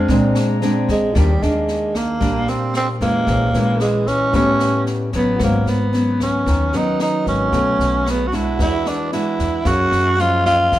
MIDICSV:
0, 0, Header, 1, 7, 480
1, 0, Start_track
1, 0, Tempo, 531915
1, 1031, Time_signature, 4, 2, 24, 8
1, 9737, End_track
2, 0, Start_track
2, 0, Title_t, "Brass ensemble"
2, 0, Program_c, 0, 61
2, 0, Note_on_c, 0, 72, 68
2, 79, Note_on_c, 0, 82, 78
2, 84, Note_on_c, 0, 62, 81
2, 1019, Note_off_c, 0, 72, 0
2, 1025, Note_off_c, 0, 82, 0
2, 1027, Note_off_c, 0, 62, 0
2, 9737, End_track
3, 0, Start_track
3, 0, Title_t, "Grand piano"
3, 0, Program_c, 1, 0
3, 0, Control_c, 1, 64, 127
3, 0, Note_on_c, 1, 63, 48
3, 0, Note_on_c, 1, 75, 78
3, 77, Note_on_c, 1, 56, 46
3, 85, Control_c, 1, 64, 0
3, 85, Note_on_c, 1, 60, 41
3, 87, Note_on_c, 1, 62, 52
3, 93, Note_off_c, 1, 63, 0
3, 93, Note_off_c, 1, 75, 0
3, 225, Control_c, 1, 64, 127
3, 758, Note_off_c, 1, 56, 0
3, 762, Note_off_c, 1, 60, 0
3, 763, Note_off_c, 1, 62, 0
3, 1017, Note_on_c, 1, 65, 41
3, 1037, Note_on_c, 1, 67, 35
3, 1043, Control_c, 1, 64, 0
3, 1057, Note_on_c, 1, 70, 38
3, 1075, Note_on_c, 1, 74, 52
3, 1179, Control_c, 1, 64, 127
3, 2906, Note_off_c, 1, 65, 0
3, 2916, Note_off_c, 1, 67, 0
3, 2926, Note_off_c, 1, 70, 0
3, 2935, Note_off_c, 1, 74, 0
3, 2937, Note_on_c, 1, 64, 41
3, 2949, Note_on_c, 1, 68, 42
3, 2960, Control_c, 1, 64, 0
3, 2968, Note_on_c, 1, 72, 41
3, 2986, Note_on_c, 1, 73, 44
3, 3106, Control_c, 1, 64, 127
3, 3864, Note_off_c, 1, 64, 0
3, 3877, Note_on_c, 1, 64, 47
3, 3889, Note_off_c, 1, 68, 0
3, 3894, Note_on_c, 1, 67, 43
3, 3899, Note_off_c, 1, 72, 0
3, 3908, Note_on_c, 1, 71, 45
3, 3909, Note_off_c, 1, 73, 0
3, 3919, Control_c, 1, 64, 0
3, 3931, Note_on_c, 1, 73, 57
3, 4074, Control_c, 1, 64, 127
3, 4834, Note_off_c, 1, 64, 0
3, 4835, Note_on_c, 1, 66, 45
3, 4842, Note_off_c, 1, 67, 0
3, 4850, Note_off_c, 1, 71, 0
3, 4859, Note_on_c, 1, 70, 42
3, 4861, Note_off_c, 1, 73, 0
3, 4874, Note_on_c, 1, 71, 39
3, 4882, Control_c, 1, 64, 0
3, 4892, Note_on_c, 1, 73, 48
3, 5057, Control_c, 1, 64, 127
3, 6500, Note_off_c, 1, 66, 0
3, 6511, Note_off_c, 1, 70, 0
3, 6519, Note_off_c, 1, 71, 0
3, 6528, Note_off_c, 1, 73, 0
3, 6534, Note_on_c, 1, 66, 36
3, 6544, Note_on_c, 1, 70, 34
3, 6553, Note_on_c, 1, 71, 35
3, 6560, Note_on_c, 1, 75, 40
3, 6754, Note_off_c, 1, 66, 0
3, 6767, Note_on_c, 1, 66, 46
3, 6787, Note_off_c, 1, 70, 0
3, 6788, Note_on_c, 1, 69, 39
3, 6792, Note_off_c, 1, 71, 0
3, 6795, Note_off_c, 1, 75, 0
3, 6803, Control_c, 1, 64, 0
3, 6806, Note_on_c, 1, 73, 41
3, 6822, Note_on_c, 1, 71, 51
3, 6951, Control_c, 1, 64, 127
3, 7711, Note_off_c, 1, 66, 0
3, 7724, Note_on_c, 1, 66, 46
3, 7731, Note_off_c, 1, 69, 0
3, 7741, Note_off_c, 1, 73, 0
3, 7743, Note_on_c, 1, 68, 43
3, 7746, Note_off_c, 1, 71, 0
3, 7760, Note_on_c, 1, 71, 42
3, 7763, Control_c, 1, 64, 0
3, 7774, Note_on_c, 1, 74, 49
3, 7930, Control_c, 1, 64, 127
3, 8681, Note_off_c, 1, 66, 0
3, 8690, Note_off_c, 1, 68, 0
3, 8692, Note_on_c, 1, 77, 43
3, 8699, Note_off_c, 1, 71, 0
3, 8706, Note_off_c, 1, 74, 0
3, 8710, Note_on_c, 1, 68, 40
3, 8722, Note_on_c, 1, 70, 38
3, 8725, Control_c, 1, 64, 0
3, 8745, Note_on_c, 1, 73, 53
3, 8867, Control_c, 1, 64, 127
3, 9737, Note_off_c, 1, 68, 0
3, 9737, Note_off_c, 1, 70, 0
3, 9737, Note_off_c, 1, 73, 0
3, 9737, Note_off_c, 1, 77, 0
3, 9737, End_track
4, 0, Start_track
4, 0, Title_t, "Tenor saxophone"
4, 0, Program_c, 2, 66
4, 821, Note_on_c, 2, 56, 78
4, 1055, Note_on_c, 2, 55, 74
4, 1068, Note_off_c, 2, 56, 0
4, 1288, Note_on_c, 2, 56, 70
4, 1302, Note_off_c, 2, 55, 0
4, 1771, Note_on_c, 2, 58, 85
4, 1784, Note_off_c, 2, 56, 0
4, 2249, Note_on_c, 2, 60, 75
4, 2263, Note_off_c, 2, 58, 0
4, 2479, Note_off_c, 2, 60, 0
4, 2497, Note_on_c, 2, 60, 81
4, 2599, Note_off_c, 2, 60, 0
4, 2724, Note_on_c, 2, 58, 90
4, 3400, Note_off_c, 2, 58, 0
4, 3438, Note_on_c, 2, 56, 84
4, 3678, Note_on_c, 2, 61, 89
4, 3692, Note_off_c, 2, 56, 0
4, 3913, Note_off_c, 2, 61, 0
4, 3930, Note_on_c, 2, 61, 92
4, 4363, Note_off_c, 2, 61, 0
4, 4666, Note_on_c, 2, 59, 73
4, 4872, Note_off_c, 2, 59, 0
4, 4906, Note_on_c, 2, 58, 76
4, 5136, Note_on_c, 2, 59, 72
4, 5149, Note_off_c, 2, 58, 0
4, 5603, Note_off_c, 2, 59, 0
4, 5617, Note_on_c, 2, 61, 83
4, 6107, Note_on_c, 2, 63, 82
4, 6120, Note_off_c, 2, 61, 0
4, 6329, Note_off_c, 2, 63, 0
4, 6332, Note_on_c, 2, 63, 76
4, 6545, Note_off_c, 2, 63, 0
4, 6570, Note_on_c, 2, 61, 85
4, 7305, Note_on_c, 2, 59, 85
4, 7318, Note_off_c, 2, 61, 0
4, 7468, Note_on_c, 2, 66, 61
4, 7482, Note_off_c, 2, 59, 0
4, 7534, Note_on_c, 2, 64, 85
4, 7548, Note_off_c, 2, 66, 0
4, 7763, Note_off_c, 2, 64, 0
4, 7777, Note_on_c, 2, 64, 99
4, 8013, Note_on_c, 2, 62, 84
4, 8027, Note_off_c, 2, 64, 0
4, 8236, Note_off_c, 2, 62, 0
4, 8242, Note_on_c, 2, 64, 83
4, 8725, Note_on_c, 2, 66, 95
4, 8739, Note_off_c, 2, 64, 0
4, 9204, Note_on_c, 2, 65, 101
4, 9217, Note_off_c, 2, 66, 0
4, 9435, Note_off_c, 2, 65, 0
4, 9440, Note_on_c, 2, 65, 95
4, 9737, Note_off_c, 2, 65, 0
4, 9737, End_track
5, 0, Start_track
5, 0, Title_t, "Nylon-string guitar"
5, 0, Program_c, 3, 24
5, 0, Note_on_c, 3, 56, 69
5, 0, Note_on_c, 3, 60, 70
5, 0, Note_on_c, 3, 62, 72
5, 93, Note_on_c, 3, 46, 68
5, 523, Note_off_c, 3, 56, 0
5, 524, Note_off_c, 3, 60, 0
5, 524, Note_off_c, 3, 62, 0
5, 558, Note_on_c, 3, 56, 54
5, 563, Note_on_c, 3, 62, 68
5, 564, Note_on_c, 3, 60, 64
5, 996, Note_off_c, 3, 56, 0
5, 997, Note_off_c, 3, 60, 0
5, 998, Note_off_c, 3, 62, 0
5, 1017, Note_off_c, 3, 46, 0
5, 1037, Note_on_c, 3, 51, 47
5, 1038, Note_on_c, 3, 55, 46
5, 1043, Note_on_c, 3, 58, 53
5, 1045, Note_on_c, 3, 62, 52
5, 1175, Note_off_c, 3, 55, 0
5, 1178, Note_off_c, 3, 58, 0
5, 1178, Note_off_c, 3, 62, 0
5, 1286, Note_on_c, 3, 58, 61
5, 1291, Note_on_c, 3, 62, 62
5, 1959, Note_off_c, 3, 58, 0
5, 1960, Note_off_c, 3, 62, 0
5, 1969, Note_off_c, 3, 51, 0
5, 1986, Note_on_c, 3, 46, 50
5, 1988, Note_on_c, 3, 55, 49
5, 1991, Note_on_c, 3, 58, 62
5, 1995, Note_on_c, 3, 62, 62
5, 2669, Note_off_c, 3, 55, 0
5, 2671, Note_off_c, 3, 58, 0
5, 2673, Note_off_c, 3, 62, 0
5, 2717, Note_on_c, 3, 52, 59
5, 2721, Note_on_c, 3, 56, 54
5, 2726, Note_on_c, 3, 61, 61
5, 2924, Note_off_c, 3, 46, 0
5, 2955, Note_on_c, 3, 46, 52
5, 3155, Note_off_c, 3, 52, 0
5, 3155, Note_off_c, 3, 56, 0
5, 3159, Note_off_c, 3, 61, 0
5, 3197, Note_on_c, 3, 52, 61
5, 3204, Note_on_c, 3, 56, 58
5, 3204, Note_on_c, 3, 61, 71
5, 3875, Note_off_c, 3, 52, 0
5, 3876, Note_off_c, 3, 56, 0
5, 3878, Note_off_c, 3, 61, 0
5, 3888, Note_off_c, 3, 46, 0
5, 3909, Note_on_c, 3, 55, 57
5, 3916, Note_on_c, 3, 45, 55
5, 3918, Note_on_c, 3, 59, 57
5, 3922, Note_on_c, 3, 61, 66
5, 4591, Note_off_c, 3, 55, 0
5, 4595, Note_off_c, 3, 59, 0
5, 4595, Note_off_c, 3, 61, 0
5, 4642, Note_on_c, 3, 54, 61
5, 4646, Note_on_c, 3, 59, 64
5, 4648, Note_on_c, 3, 61, 70
5, 4849, Note_off_c, 3, 45, 0
5, 4880, Note_on_c, 3, 44, 54
5, 5078, Note_off_c, 3, 54, 0
5, 5078, Note_off_c, 3, 59, 0
5, 5080, Note_off_c, 3, 61, 0
5, 5350, Note_on_c, 3, 54, 47
5, 5353, Note_on_c, 3, 59, 51
5, 5358, Note_on_c, 3, 61, 57
5, 5811, Note_off_c, 3, 44, 0
5, 5840, Note_on_c, 3, 51, 52
5, 6032, Note_off_c, 3, 54, 0
5, 6033, Note_off_c, 3, 59, 0
5, 6036, Note_off_c, 3, 61, 0
5, 6072, Note_on_c, 3, 54, 57
5, 6075, Note_on_c, 3, 59, 58
5, 6082, Note_on_c, 3, 61, 59
5, 6753, Note_off_c, 3, 54, 0
5, 6754, Note_off_c, 3, 59, 0
5, 6758, Note_off_c, 3, 61, 0
5, 6772, Note_off_c, 3, 51, 0
5, 6796, Note_on_c, 3, 47, 46
5, 6796, Note_on_c, 3, 54, 47
5, 6799, Note_on_c, 3, 57, 50
5, 7476, Note_off_c, 3, 54, 0
5, 7477, Note_off_c, 3, 57, 0
5, 7509, Note_on_c, 3, 56, 54
5, 7513, Note_on_c, 3, 62, 60
5, 7519, Note_on_c, 3, 66, 65
5, 7731, Note_off_c, 3, 47, 0
5, 7750, Note_on_c, 3, 52, 51
5, 8194, Note_off_c, 3, 56, 0
5, 8195, Note_off_c, 3, 62, 0
5, 8198, Note_off_c, 3, 66, 0
5, 8238, Note_on_c, 3, 56, 50
5, 8244, Note_on_c, 3, 62, 53
5, 8251, Note_on_c, 3, 66, 60
5, 8678, Note_off_c, 3, 56, 0
5, 8681, Note_off_c, 3, 62, 0
5, 8684, Note_off_c, 3, 66, 0
5, 8689, Note_off_c, 3, 52, 0
5, 8706, Note_on_c, 3, 42, 52
5, 8714, Note_on_c, 3, 58, 51
5, 8715, Note_on_c, 3, 61, 61
5, 9155, Note_off_c, 3, 61, 0
5, 9157, Note_off_c, 3, 58, 0
5, 9203, Note_on_c, 3, 53, 53
5, 9206, Note_on_c, 3, 58, 52
5, 9209, Note_on_c, 3, 61, 54
5, 9648, Note_off_c, 3, 42, 0
5, 9681, Note_on_c, 3, 49, 53
5, 9737, Note_off_c, 3, 49, 0
5, 9737, Note_off_c, 3, 53, 0
5, 9737, Note_off_c, 3, 58, 0
5, 9737, Note_off_c, 3, 61, 0
5, 9737, End_track
6, 0, Start_track
6, 0, Title_t, "Upright bass"
6, 0, Program_c, 4, 32
6, 81, Note_on_c, 4, 34, 97
6, 300, Note_off_c, 4, 34, 0
6, 800, Note_on_c, 4, 34, 86
6, 1019, Note_off_c, 4, 34, 0
6, 1040, Note_on_c, 4, 39, 97
6, 1259, Note_off_c, 4, 39, 0
6, 1281, Note_on_c, 4, 39, 74
6, 1959, Note_off_c, 4, 39, 0
6, 1994, Note_on_c, 4, 34, 76
6, 2215, Note_off_c, 4, 34, 0
6, 2712, Note_on_c, 4, 41, 77
6, 2934, Note_off_c, 4, 41, 0
6, 2952, Note_on_c, 4, 34, 91
6, 3174, Note_off_c, 4, 34, 0
6, 3191, Note_on_c, 4, 34, 74
6, 3874, Note_off_c, 4, 34, 0
6, 3908, Note_on_c, 4, 33, 80
6, 4132, Note_off_c, 4, 33, 0
6, 4630, Note_on_c, 4, 33, 78
6, 4853, Note_off_c, 4, 33, 0
6, 4872, Note_on_c, 4, 32, 96
6, 5094, Note_off_c, 4, 32, 0
6, 5106, Note_on_c, 4, 32, 77
6, 5792, Note_off_c, 4, 32, 0
6, 5834, Note_on_c, 4, 39, 84
6, 6055, Note_off_c, 4, 39, 0
6, 6554, Note_on_c, 4, 32, 77
6, 6776, Note_off_c, 4, 32, 0
6, 6791, Note_on_c, 4, 35, 95
6, 7014, Note_off_c, 4, 35, 0
6, 7027, Note_on_c, 4, 35, 71
6, 7714, Note_off_c, 4, 35, 0
6, 7753, Note_on_c, 4, 40, 75
6, 7976, Note_off_c, 4, 40, 0
6, 8474, Note_on_c, 4, 40, 73
6, 8697, Note_off_c, 4, 40, 0
6, 8710, Note_on_c, 4, 42, 99
6, 8935, Note_off_c, 4, 42, 0
6, 8946, Note_on_c, 4, 42, 81
6, 9635, Note_off_c, 4, 42, 0
6, 9675, Note_on_c, 4, 37, 75
6, 9737, Note_off_c, 4, 37, 0
6, 9737, End_track
7, 0, Start_track
7, 0, Title_t, "Drums"
7, 77, Note_on_c, 9, 36, 74
7, 79, Note_on_c, 9, 38, 28
7, 167, Note_off_c, 9, 36, 0
7, 169, Note_off_c, 9, 38, 0
7, 317, Note_on_c, 9, 37, 57
7, 317, Note_on_c, 9, 38, 24
7, 408, Note_off_c, 9, 37, 0
7, 408, Note_off_c, 9, 38, 0
7, 557, Note_on_c, 9, 38, 26
7, 647, Note_off_c, 9, 38, 0
7, 798, Note_on_c, 9, 36, 23
7, 799, Note_on_c, 9, 38, 25
7, 888, Note_off_c, 9, 36, 0
7, 889, Note_off_c, 9, 38, 0
7, 1038, Note_on_c, 9, 36, 53
7, 1039, Note_on_c, 9, 37, 53
7, 1039, Note_on_c, 9, 38, 20
7, 1128, Note_off_c, 9, 36, 0
7, 1129, Note_off_c, 9, 37, 0
7, 1129, Note_off_c, 9, 38, 0
7, 1284, Note_on_c, 9, 38, 20
7, 1374, Note_off_c, 9, 38, 0
7, 1516, Note_on_c, 9, 38, 20
7, 1606, Note_off_c, 9, 38, 0
7, 1755, Note_on_c, 9, 36, 20
7, 1759, Note_on_c, 9, 37, 50
7, 1759, Note_on_c, 9, 38, 22
7, 1845, Note_off_c, 9, 36, 0
7, 1849, Note_off_c, 9, 37, 0
7, 1849, Note_off_c, 9, 38, 0
7, 1992, Note_on_c, 9, 38, 24
7, 1993, Note_on_c, 9, 36, 59
7, 2082, Note_off_c, 9, 38, 0
7, 2084, Note_off_c, 9, 36, 0
7, 2233, Note_on_c, 9, 38, 21
7, 2323, Note_off_c, 9, 38, 0
7, 2471, Note_on_c, 9, 37, 51
7, 2471, Note_on_c, 9, 38, 21
7, 2562, Note_off_c, 9, 37, 0
7, 2562, Note_off_c, 9, 38, 0
7, 2712, Note_on_c, 9, 36, 22
7, 2715, Note_on_c, 9, 38, 22
7, 2802, Note_off_c, 9, 36, 0
7, 2805, Note_off_c, 9, 38, 0
7, 2951, Note_on_c, 9, 38, 21
7, 2952, Note_on_c, 9, 36, 54
7, 3041, Note_off_c, 9, 38, 0
7, 3042, Note_off_c, 9, 36, 0
7, 3194, Note_on_c, 9, 38, 22
7, 3284, Note_off_c, 9, 38, 0
7, 3429, Note_on_c, 9, 37, 54
7, 3429, Note_on_c, 9, 38, 23
7, 3519, Note_off_c, 9, 37, 0
7, 3519, Note_off_c, 9, 38, 0
7, 3671, Note_on_c, 9, 36, 22
7, 3672, Note_on_c, 9, 38, 22
7, 3761, Note_off_c, 9, 36, 0
7, 3762, Note_off_c, 9, 38, 0
7, 3908, Note_on_c, 9, 38, 26
7, 3910, Note_on_c, 9, 36, 65
7, 3998, Note_off_c, 9, 38, 0
7, 4000, Note_off_c, 9, 36, 0
7, 4148, Note_on_c, 9, 37, 59
7, 4148, Note_on_c, 9, 38, 23
7, 4238, Note_off_c, 9, 37, 0
7, 4238, Note_off_c, 9, 38, 0
7, 4386, Note_on_c, 9, 38, 21
7, 4477, Note_off_c, 9, 38, 0
7, 4623, Note_on_c, 9, 38, 20
7, 4627, Note_on_c, 9, 36, 21
7, 4714, Note_off_c, 9, 38, 0
7, 4717, Note_off_c, 9, 36, 0
7, 4868, Note_on_c, 9, 37, 56
7, 4868, Note_on_c, 9, 38, 23
7, 4869, Note_on_c, 9, 36, 52
7, 4958, Note_off_c, 9, 37, 0
7, 4958, Note_off_c, 9, 38, 0
7, 4959, Note_off_c, 9, 36, 0
7, 5112, Note_on_c, 9, 38, 24
7, 5203, Note_off_c, 9, 38, 0
7, 5357, Note_on_c, 9, 38, 23
7, 5447, Note_off_c, 9, 38, 0
7, 5592, Note_on_c, 9, 36, 23
7, 5597, Note_on_c, 9, 37, 50
7, 5597, Note_on_c, 9, 38, 20
7, 5682, Note_off_c, 9, 36, 0
7, 5687, Note_off_c, 9, 37, 0
7, 5687, Note_off_c, 9, 38, 0
7, 5831, Note_on_c, 9, 36, 59
7, 5834, Note_on_c, 9, 38, 26
7, 5922, Note_off_c, 9, 36, 0
7, 5924, Note_off_c, 9, 38, 0
7, 6072, Note_on_c, 9, 38, 22
7, 6162, Note_off_c, 9, 38, 0
7, 6312, Note_on_c, 9, 37, 53
7, 6312, Note_on_c, 9, 38, 23
7, 6402, Note_off_c, 9, 37, 0
7, 6402, Note_off_c, 9, 38, 0
7, 6551, Note_on_c, 9, 36, 22
7, 6554, Note_on_c, 9, 38, 21
7, 6641, Note_off_c, 9, 36, 0
7, 6644, Note_off_c, 9, 38, 0
7, 6791, Note_on_c, 9, 36, 52
7, 6792, Note_on_c, 9, 38, 22
7, 6882, Note_off_c, 9, 36, 0
7, 6882, Note_off_c, 9, 38, 0
7, 7037, Note_on_c, 9, 38, 22
7, 7128, Note_off_c, 9, 38, 0
7, 7278, Note_on_c, 9, 37, 55
7, 7278, Note_on_c, 9, 38, 22
7, 7368, Note_off_c, 9, 37, 0
7, 7368, Note_off_c, 9, 38, 0
7, 7513, Note_on_c, 9, 36, 22
7, 7518, Note_on_c, 9, 38, 22
7, 7603, Note_off_c, 9, 36, 0
7, 7608, Note_off_c, 9, 38, 0
7, 7753, Note_on_c, 9, 36, 58
7, 7755, Note_on_c, 9, 38, 26
7, 7843, Note_off_c, 9, 36, 0
7, 7845, Note_off_c, 9, 38, 0
7, 7993, Note_on_c, 9, 37, 48
7, 7993, Note_on_c, 9, 38, 21
7, 8083, Note_off_c, 9, 37, 0
7, 8083, Note_off_c, 9, 38, 0
7, 8233, Note_on_c, 9, 38, 23
7, 8323, Note_off_c, 9, 38, 0
7, 8471, Note_on_c, 9, 36, 20
7, 8473, Note_on_c, 9, 38, 21
7, 8561, Note_off_c, 9, 36, 0
7, 8563, Note_off_c, 9, 38, 0
7, 8709, Note_on_c, 9, 37, 51
7, 8709, Note_on_c, 9, 38, 21
7, 8710, Note_on_c, 9, 36, 53
7, 8799, Note_off_c, 9, 37, 0
7, 8799, Note_off_c, 9, 38, 0
7, 8800, Note_off_c, 9, 36, 0
7, 8949, Note_on_c, 9, 38, 23
7, 9040, Note_off_c, 9, 38, 0
7, 9192, Note_on_c, 9, 38, 23
7, 9282, Note_off_c, 9, 38, 0
7, 9434, Note_on_c, 9, 36, 22
7, 9435, Note_on_c, 9, 37, 50
7, 9435, Note_on_c, 9, 38, 22
7, 9524, Note_off_c, 9, 36, 0
7, 9526, Note_off_c, 9, 37, 0
7, 9526, Note_off_c, 9, 38, 0
7, 9673, Note_on_c, 9, 38, 25
7, 9674, Note_on_c, 9, 36, 57
7, 9737, Note_off_c, 9, 36, 0
7, 9737, Note_off_c, 9, 38, 0
7, 9737, End_track
0, 0, End_of_file